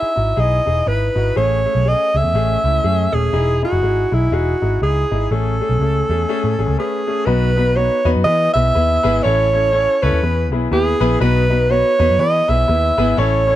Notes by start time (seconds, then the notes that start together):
Already playing: E5
0.02 muted picked electric bass stroke
0.15 G#1 D#4 E4 F#4
0.36 B1 D#4 E4 G#4 D#5
0.66 E1 D#4 E4 G#4
0.86 G#1 D#4 E4 B4
1.15 G#1 D#4 E4 F#4
1.36 A1 A3 C#4 G#4 C#5
1.65 A3 C#4 G#4
1.75 B1
1.85 A3 C#4 G#4 D#5
2.14 C#2 A3 C#4 G#4 E5
2.24 E2
2.34 A1 A3 C#4 G#4
2.64 C#2 A3 C#4 E4
2.83 F#2 A3 C#4 G#4
3.12 D#1 A3 C#4 G#4
3.33 E1 D#4 E4 G#4
3.63 D#4 E4 F#4 G#4
3.73 F#1
3.82 G#1 D#4 E4 G#4
4.11 B1 D#4 E4 G#4
4.32 E1 D#4 E4 F#4 G#4
4.62 G#1 D#4 E4 G#4
4.82 C#2 D#4 E4 G#4
5.11 G#1 D#4 E4 G#4
5.31 A1 A3 C#4 G#4 A4
5.60 A3 C#4 G#4
5.69 B1
5.80 C#2 A3 C#4 G#4
6.09 E2 A3 C#4 G#4
6.29 A3 C#4 G#4
6.44 A2
6.58 A1 A3 C#4 G#4
6.68 C#2
6.77 A3 C#4 G#4 B4
7.07 A3 C#4 G#4
7.26 B1 B3 D#4 F#4 B4
7.57 B3 D#4 F#4 B4
7.76 B3 D#4 F#4 B4 C#5
8.05 E2 B3 D#4 F#4 B4
8.16 F#2
8.24 E3 B3 E4 G#4 D#5
8.54 B1 B3 E4 G#4 B4 E5
8.75 D#2 B3 E4 G#4 B4
9.03 G#1 B3 E4 G#4 B4
9.23 A1 C#4 E4 A4 C#5
9.53 C#4 E4 A4 C#5
9.72 C#4 E4 A4 C#5
10.02 C#2 C#4 E4 A4 B4 C#5
10.13 D#2
10.22 E2 B3 E4 G#4 B4
10.52 B1 B3 E4 G#4 B4
10.71 D#2 B3 E4 G#4 B4
11.00 A#1 B3 E4 G#4 B4
11.20 B1 B3 D#4 F#4 B4
11.50 B3 D#4 F#4 B4
11.70 B3 D#4 F#4 B4 C#5
11.99 E2 B3 D#4 F#4 B4
12.10 F#2
12.19 E3 B3 E4 G#4 B4 D#5
12.48 B1 B3 E4 G#4 B4 E5
12.67 D#2 B3 E4 G#4 B4
12.97 G#1 B3 E4 G#4 B4
13.17 A1 C#4 E4 A4 C#5
13.47 C#4 E4 A4 C#5